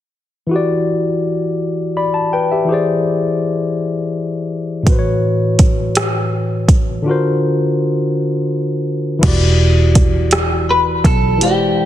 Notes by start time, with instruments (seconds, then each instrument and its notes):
0.47 tine electric piano E3 E4
0.51 tine electric piano F#4 G4
0.56 tine electric piano D5
1.97 tine electric piano D5 B5
2.14 tine electric piano A5
2.33 tine electric piano B4 G5
2.52 tine electric piano G4 E5
2.65 tine electric piano E3 E4 G4
2.70 tine electric piano G#4 C5 D5
4.83 tine electric piano A2 E3, kick, closed hi-hat
4.87 tine electric piano F#4 B4
4.92 tine electric piano C5
4.99 tine electric piano C#5
5.59 kick, closed hi-hat
5.95 cross-stick, closed hi-hat
6.68 kick, closed hi-hat
7.02 tine electric piano D3 D4 F4
7.08 tine electric piano F#4 A#4 C5
9.19 tine electric piano E3 E4, closed hi-hat, crash
9.23 fingered electric bass E1, tine electric piano F#4 G4, kick
9.28 tine electric piano D5
9.95 kick, closed hi-hat
10.31 cross-stick, closed hi-hat
10.71 clean electric guitar B4
11.04 fingered electric bass B1, clean electric guitar A4, kick, closed hi-hat
11.37 fingered electric bass E1, tine electric piano E3 E4 G4
11.41 tine electric piano G#3 C5, clean electric guitar G4, closed hi-hat
11.46 tine electric piano D5